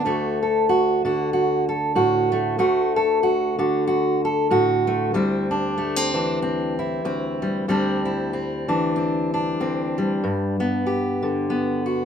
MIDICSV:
0, 0, Header, 1, 2, 480
1, 0, Start_track
1, 0, Tempo, 635593
1, 43, Time_signature, 4, 2, 24, 8
1, 9100, End_track
2, 0, Start_track
2, 0, Title_t, "Steel-string acoustic guitar"
2, 0, Program_c, 0, 25
2, 0, Note_on_c, 0, 50, 60
2, 37, Note_on_c, 0, 38, 53
2, 43, Note_on_c, 0, 57, 43
2, 49, Note_on_c, 0, 66, 46
2, 318, Note_off_c, 0, 66, 0
2, 321, Note_on_c, 0, 69, 40
2, 520, Note_off_c, 0, 69, 0
2, 523, Note_on_c, 0, 66, 50
2, 781, Note_off_c, 0, 50, 0
2, 791, Note_on_c, 0, 50, 49
2, 794, Note_off_c, 0, 66, 0
2, 797, Note_on_c, 0, 66, 44
2, 1003, Note_off_c, 0, 66, 0
2, 1006, Note_on_c, 0, 66, 45
2, 1271, Note_off_c, 0, 66, 0
2, 1274, Note_on_c, 0, 69, 43
2, 1475, Note_on_c, 0, 45, 50
2, 1477, Note_off_c, 0, 69, 0
2, 1480, Note_on_c, 0, 66, 57
2, 1748, Note_off_c, 0, 57, 0
2, 1751, Note_on_c, 0, 57, 46
2, 1936, Note_off_c, 0, 66, 0
2, 1942, Note_off_c, 0, 38, 0
2, 1951, Note_on_c, 0, 38, 53
2, 1952, Note_off_c, 0, 57, 0
2, 1955, Note_on_c, 0, 57, 48
2, 1959, Note_off_c, 0, 45, 0
2, 1961, Note_on_c, 0, 66, 51
2, 2234, Note_off_c, 0, 66, 0
2, 2238, Note_on_c, 0, 69, 45
2, 2437, Note_off_c, 0, 69, 0
2, 2440, Note_on_c, 0, 66, 49
2, 2699, Note_off_c, 0, 50, 0
2, 2703, Note_off_c, 0, 66, 0
2, 2708, Note_on_c, 0, 50, 51
2, 2712, Note_on_c, 0, 66, 47
2, 2917, Note_off_c, 0, 66, 0
2, 2926, Note_on_c, 0, 66, 50
2, 3198, Note_off_c, 0, 66, 0
2, 3208, Note_on_c, 0, 69, 45
2, 3402, Note_on_c, 0, 45, 49
2, 3404, Note_off_c, 0, 69, 0
2, 3407, Note_on_c, 0, 66, 55
2, 3671, Note_off_c, 0, 57, 0
2, 3680, Note_on_c, 0, 57, 48
2, 3860, Note_off_c, 0, 57, 0
2, 3860, Note_off_c, 0, 66, 0
2, 3870, Note_off_c, 0, 38, 0
2, 3879, Note_off_c, 0, 50, 0
2, 3879, Note_on_c, 0, 38, 52
2, 3883, Note_off_c, 0, 45, 0
2, 3884, Note_on_c, 0, 55, 49
2, 3888, Note_on_c, 0, 60, 45
2, 3893, Note_on_c, 0, 64, 50
2, 4157, Note_off_c, 0, 64, 0
2, 4160, Note_on_c, 0, 62, 51
2, 4359, Note_off_c, 0, 60, 0
2, 4362, Note_on_c, 0, 57, 51
2, 4503, Note_off_c, 0, 57, 0
2, 4503, Note_on_c, 0, 60, 41
2, 4630, Note_off_c, 0, 62, 0
2, 4636, Note_on_c, 0, 52, 51
2, 4641, Note_on_c, 0, 62, 50
2, 4843, Note_off_c, 0, 60, 0
2, 4852, Note_on_c, 0, 60, 46
2, 5118, Note_off_c, 0, 62, 0
2, 5127, Note_on_c, 0, 64, 47
2, 5313, Note_off_c, 0, 38, 0
2, 5317, Note_off_c, 0, 60, 0
2, 5322, Note_on_c, 0, 38, 53
2, 5326, Note_on_c, 0, 60, 52
2, 5601, Note_off_c, 0, 55, 0
2, 5604, Note_on_c, 0, 55, 46
2, 5779, Note_off_c, 0, 52, 0
2, 5780, Note_off_c, 0, 60, 0
2, 5784, Note_off_c, 0, 64, 0
2, 5792, Note_off_c, 0, 38, 0
2, 5801, Note_on_c, 0, 38, 56
2, 5802, Note_off_c, 0, 55, 0
2, 5805, Note_on_c, 0, 55, 48
2, 5814, Note_on_c, 0, 60, 46
2, 5818, Note_on_c, 0, 62, 55
2, 6079, Note_off_c, 0, 62, 0
2, 6082, Note_on_c, 0, 64, 46
2, 6284, Note_off_c, 0, 60, 0
2, 6293, Note_on_c, 0, 60, 44
2, 6557, Note_on_c, 0, 52, 49
2, 6558, Note_off_c, 0, 64, 0
2, 6561, Note_on_c, 0, 62, 50
2, 6756, Note_off_c, 0, 60, 0
2, 6766, Note_on_c, 0, 60, 45
2, 7039, Note_off_c, 0, 62, 0
2, 7052, Note_on_c, 0, 62, 46
2, 7243, Note_off_c, 0, 38, 0
2, 7245, Note_off_c, 0, 60, 0
2, 7251, Note_on_c, 0, 38, 52
2, 7255, Note_on_c, 0, 60, 47
2, 7519, Note_off_c, 0, 55, 0
2, 7536, Note_on_c, 0, 55, 46
2, 7700, Note_off_c, 0, 52, 0
2, 7705, Note_off_c, 0, 60, 0
2, 7727, Note_off_c, 0, 38, 0
2, 7730, Note_on_c, 0, 43, 55
2, 8002, Note_off_c, 0, 55, 0
2, 8005, Note_on_c, 0, 59, 46
2, 8202, Note_off_c, 0, 62, 0
2, 8205, Note_on_c, 0, 67, 46
2, 8477, Note_on_c, 0, 50, 50
2, 8681, Note_off_c, 0, 59, 0
2, 8684, Note_on_c, 0, 59, 44
2, 8952, Note_off_c, 0, 67, 0
2, 8955, Note_on_c, 0, 66, 43
2, 9100, Note_off_c, 0, 43, 0
2, 9100, Note_off_c, 0, 50, 0
2, 9100, Note_off_c, 0, 59, 0
2, 9100, Note_off_c, 0, 66, 0
2, 9100, End_track
0, 0, End_of_file